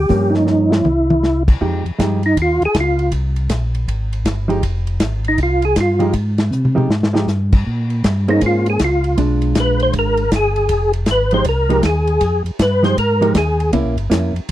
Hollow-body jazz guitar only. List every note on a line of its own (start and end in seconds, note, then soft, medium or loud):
0.09 0.85 F3 medium
0.09 0.85 A#3 medium
0.09 0.86 C#4 medium
1.61 1.83 F3 medium
1.61 1.83 G#3 soft
1.61 1.83 D#4 medium
1.61 1.84 G4 medium
1.99 2.21 F3 soft
1.99 2.21 G#3 soft
1.99 2.21 D#4 medium
1.99 2.21 G4 medium
4.48 4.61 F3 medium
4.48 4.62 G#3 medium
4.48 4.61 D#4 medium
4.48 4.62 G4 medium
5.99 6.12 F3 medium
5.99 6.13 G#3 medium
5.99 6.13 D#4 medium
5.99 6.13 G4 medium
6.75 6.88 F3 medium
6.75 6.88 G#3 medium
6.75 6.88 D#4 medium
6.75 6.89 G4 medium
7.13 7.26 F3 soft
7.13 7.26 G#3 soft
7.13 7.26 D#4 soft
7.13 7.27 G4 medium
8.28 8.77 A#3 medium
8.28 8.77 C#4 medium
8.28 8.77 G#4 medium
8.28 8.77 C5 medium
9.18 10.23 G#3 medium
9.18 10.24 D4 medium
9.18 10.24 F4 medium
11.33 11.44 F3 medium
11.33 11.45 G#3 medium
11.33 11.45 D#4 medium
11.33 11.45 G4 medium
11.69 11.81 F3 medium
11.69 11.82 G#3 medium
11.69 11.82 D#4 medium
11.69 11.82 G4 medium
12.83 12.95 F3 medium
12.83 12.96 G#3 medium
12.83 12.95 D#4 medium
12.83 12.96 G4 medium
13.21 13.33 F3 medium
13.21 13.34 G#3 medium
13.21 13.34 D#4 medium
13.21 13.34 G4 medium
13.73 13.95 A#3 medium
13.73 13.95 C#4 medium
13.73 13.95 E4 medium
14.10 14.32 A#3 soft
14.10 14.33 C#4 medium
14.10 14.33 E4 medium